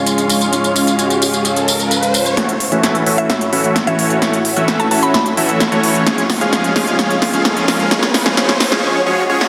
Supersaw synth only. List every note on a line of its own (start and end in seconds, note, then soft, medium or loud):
2.37 2.53 E3 medium
2.37 2.53 A3 medium
2.37 2.53 C#4 medium
2.37 2.53 F#4 medium
2.37 2.53 C#5 medium
2.72 3.04 E3 medium
2.72 3.04 A3 medium
2.72 3.04 C#4 medium
2.72 3.04 F#4 medium
2.72 3.04 E5 medium
3.06 3.32 E3 medium
3.06 3.32 A3 medium
3.06 3.32 C#4 medium
3.06 3.32 F#4 medium
3.06 3.32 E5 loud
3.53 3.78 E3 medium
3.53 3.78 A3 medium
3.53 3.78 C#4 medium
3.53 3.78 F#4 medium
3.53 3.78 E5 medium
3.87 4.19 E3 medium
3.87 4.19 A3 medium
3.87 4.19 C#4 medium
3.87 4.19 F#4 medium
3.87 4.19 C#5 loud
4.22 4.38 E3 medium
4.22 4.38 A3 medium
4.22 4.38 C#4 medium
4.22 4.38 F#4 medium
4.22 4.38 C#5 medium
4.57 4.88 E3 medium
4.57 4.88 A3 medium
4.57 4.88 C#4 medium
4.57 4.88 F#4 medium
4.57 4.88 E5 medium
4.91 5.17 E3 loud
4.91 5.16 A3 medium
4.91 5.16 C#4 medium
4.91 5.17 F#4 medium
4.91 5.17 E5 loud
5.37 5.63 E3 medium
5.37 5.63 A3 medium
5.37 5.63 C#4 medium
5.37 5.63 F#4 medium
5.37 5.63 E5 medium
5.72 6.04 E3 medium
5.72 6.04 A3 medium
5.72 6.04 C#4 medium
5.72 6.04 F#4 medium
5.72 6.04 C#5 loud
6.07 6.22 F3 medium
6.07 6.22 G#3 medium
6.07 6.22 C#4 medium
6.07 6.22 G#4 medium
6.07 6.22 C#5 medium
6.41 6.73 F3 medium
6.41 6.73 G#3 medium
6.41 6.73 C#4 medium
6.41 6.73 G#4 medium
6.41 6.73 F5 medium
6.76 6.97 F3 medium
6.76 6.97 G#3 medium
6.76 6.97 C#4 medium
6.76 6.97 G#4 medium
6.76 6.97 F5 loud
6.99 7.15 F3 medium
6.99 7.15 G#3 medium
6.99 7.15 C#4 medium
6.99 7.15 G#4 medium
6.99 7.15 C#5 medium
7.33 7.65 F3 medium
7.33 7.65 G#3 medium
7.33 7.65 C#4 medium
7.33 7.65 G#4 medium
7.33 7.65 F5 medium
7.68 7.89 F3 medium
7.68 7.89 G#3 medium
7.68 7.89 C#4 medium
7.68 7.89 G#4 medium
7.68 7.89 F5 loud
7.91 8.07 F3 medium
7.91 8.07 G#3 medium
7.91 8.07 C#4 medium
7.91 8.07 G#4 medium
7.91 8.07 C#5 medium
8.26 8.35 F3 medium
8.26 8.35 G#3 medium
8.26 8.35 C#4 medium
8.26 8.35 G#4 medium
8.26 8.35 F5 medium
8.37 8.53 F3 medium
8.37 8.53 G#3 medium
8.37 8.53 C#4 medium
8.37 8.53 G#4 medium
8.37 8.53 C#5 medium
8.72 8.82 F3 medium
8.72 8.82 G#3 medium
8.72 8.82 C#4 medium
8.72 8.82 G#4 medium
8.72 8.82 F5 medium
8.83 8.99 F3 medium
8.83 8.99 G#3 medium
8.83 8.99 C#4 medium
8.83 8.99 G#4 medium
8.83 8.99 C#5 medium
9.06 9.22 F3 medium
9.06 9.22 G#3 medium
9.06 9.22 C#4 medium
9.06 9.22 G#4 medium
9.06 9.22 C#5 medium
9.30 9.45 F3 medium
9.30 9.45 G#3 medium
9.30 9.45 C#4 medium
9.30 9.45 G#4 medium
9.30 9.45 C#5 medium